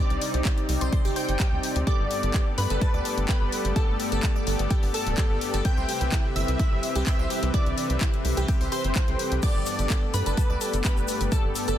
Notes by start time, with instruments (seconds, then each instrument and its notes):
Already playing: ambient pad G3 C4 D#4 G4
0.00 supersaw synth C3 C4 D#4 G4 D5, analog synth lead D5, synth pluck D6
0.10 analog synth bass C2, closed hi-hat
0.21 open hi-hat
0.34 analog synth bass C2, closed hi-hat
0.45 synth arpeggio sound G4 G5, kick, clap, closed hi-hat
0.58 closed hi-hat
0.69 analog synth bass C2, open hi-hat
0.81 analog synth bass C2, synth arpeggio sound C5 C6, closed hi-hat
0.93 synth arpeggio sound C6, kick, closed hi-hat
1.05 analog synth bass G1, synth arpeggio sound G4 G5, open hi-hat
1.16 synth arpeggio sound C5 C6, analog synth lead G5, synth pluck G6, open hi-hat
1.29 analog synth bass G1, closed hi-hat
1.40 supersaw synth C3 C4 D#4 G4, synth arpeggio sound G4 G5, kick, clap, closed hi-hat
1.52 analog synth bass D2
1.63 open hi-hat
1.76 analog synth bass D2, closed hi-hat
1.87 supersaw synth G2 B3 G4 A4 D5, ambient pad G3 A3 G4 A4, synth arpeggio sound G4 G5, analog synth lead D5, synth pluck D6, kick, closed hi-hat
2.00 analog synth bass G1
2.11 open hi-hat
2.23 analog synth bass G1, closed hi-hat
2.34 synth arpeggio sound G4 G5, kick, clap, closed hi-hat
2.58 analog synth bass G2, analog synth lead B4, synth pluck B5, open hi-hat
2.70 analog synth bass G1, synth arpeggio sound A4 A5, closed hi-hat
2.81 synth arpeggio sound A5 A6, kick, closed hi-hat
2.94 analog synth bass D2, synth arpeggio sound D5 D6
3.05 synth arpeggio sound A4 A5, open hi-hat
3.17 analog synth bass G1, closed hi-hat
3.29 synth arpeggio sound G4 G5, analog synth lead B4, synth pluck B5, kick, clap, closed hi-hat
3.41 analog synth bass G1
3.52 open hi-hat
3.65 analog synth bass G1, closed hi-hat
3.76 synth arpeggio sound G4 G5, analog synth lead A4, supersaw synth A4 D5, synth pluck A5, kick, closed hi-hat
3.88 analog synth bass G1
4.00 open hi-hat
4.12 analog synth bass G1, synth arpeggio sound A4 A5, closed hi-hat
4.23 synth arpeggio sound A5 A6, kick, clap, closed hi-hat
4.36 synth arpeggio sound D5 D6
4.47 analog synth bass G1, synth arpeggio sound A4 A5, open hi-hat
4.59 analog synth bass G1, closed hi-hat
4.70 synth arpeggio sound G4 G5, kick, closed hi-hat
4.83 analog synth bass G1, open hi-hat
4.94 analog synth lead A4, synth pluck A5, open hi-hat
5.06 analog synth bass D1, closed hi-hat
5.18 supersaw synth G2 B3 G4 D5, synth arpeggio sound G4 G5, kick, clap, closed hi-hat
5.30 analog synth bass G1
5.41 open hi-hat
5.54 analog synth bass G1, synth arpeggio sound A4 A5, closed hi-hat
5.65 supersaw synth C3 C4 G4 B4 E5, ambient pad E3 C4, synth arpeggio sound G5 G6, analog synth lead G5, synth pluck G6, kick, closed hi-hat
5.77 analog synth bass C2, synth arpeggio sound C5 C6
5.89 synth arpeggio sound G4 G5, open hi-hat
6.01 analog synth bass C2, closed hi-hat
6.12 synth arpeggio sound E4 E5, kick, clap, closed hi-hat
6.36 analog synth bass G1, analog synth lead E5, synth pluck E6, open hi-hat
6.48 analog synth bass C2, closed hi-hat
6.59 synth arpeggio sound E4 E5, kick, closed hi-hat
6.72 analog synth bass G1
6.83 open hi-hat
6.96 analog synth bass C2, synth arpeggio sound G4 G5, closed hi-hat
7.07 supersaw synth C3 C4 G4 B4 E5, analog synth lead E5, synth arpeggio sound G5 G6, synth pluck E6, kick, clap, closed hi-hat
7.19 analog synth bass C2, synth arpeggio sound C5 C6
7.30 synth arpeggio sound G4 G5, open hi-hat
7.43 analog synth bass C2, closed hi-hat
7.54 supersaw synth C3 G4 B4, synth arpeggio sound E4 E5, analog synth lead D5, synth pluck D6, kick, closed hi-hat
7.66 analog synth bass C2, closed hi-hat
7.78 open hi-hat
7.90 analog synth bass C2, closed hi-hat
8.01 synth arpeggio sound E4 E5, kick, clap, closed hi-hat
8.14 closed hi-hat
8.25 analog synth bass C2, open hi-hat
8.37 analog synth bass C2, synth arpeggio sound G4 G5, closed hi-hat
8.48 synth arpeggio sound G5 G6, kick, closed hi-hat
8.61 analog synth bass C2, synth arpeggio sound C5 C6, open hi-hat
8.72 synth arpeggio sound G4 G5, analog synth lead C5, synth pluck C6, open hi-hat
8.84 analog synth bass G1, closed hi-hat
8.95 synth arpeggio sound E4 E5, kick, clap, closed hi-hat
9.08 analog synth bass C2, supersaw synth C3 C4 G4 B4 G5, closed hi-hat
9.19 open hi-hat
9.32 analog synth bass C2, closed hi-hat
9.43 supersaw synth G2 B3 G4 A4 D5, ambient pad G3 A3 G4, synth arpeggio sound G4 G5, analog synth lead D5, synth pluck D6, kick, closed hi-hat, crash, shaker
9.55 analog synth bass G1
9.66 open hi-hat, shaker
9.79 analog synth bass G1, closed hi-hat, shaker
9.90 synth arpeggio sound A4 A5, kick, clap, closed hi-hat, shaker
10.14 analog synth bass G2, analog synth lead B4, synth pluck B5, open hi-hat, shaker
10.26 analog synth bass G1, synth arpeggio sound A4 A5, closed hi-hat, shaker
10.37 synth arpeggio sound A5 A6, kick, closed hi-hat, shaker
10.50 analog synth bass D2, synth arpeggio sound D5 D6
10.61 synth arpeggio sound A4 A5, open hi-hat, shaker
10.73 analog synth bass G1, closed hi-hat, shaker
10.84 supersaw synth G2 B3 G4, synth arpeggio sound G4 G5, analog synth lead B4, synth pluck B5, kick, clap, closed hi-hat, shaker
10.97 analog synth bass G1, shaker
11.08 open hi-hat, shaker
11.21 analog synth bass G1, closed hi-hat, shaker
11.32 supersaw synth G2 B3 G4 A4 D5, synth arpeggio sound A4 A5, analog synth lead A4, synth pluck A5, kick, closed hi-hat, shaker
11.44 analog synth bass G1
11.55 open hi-hat, shaker
11.68 analog synth bass G1, synth arpeggio sound A4 A5, closed hi-hat, shaker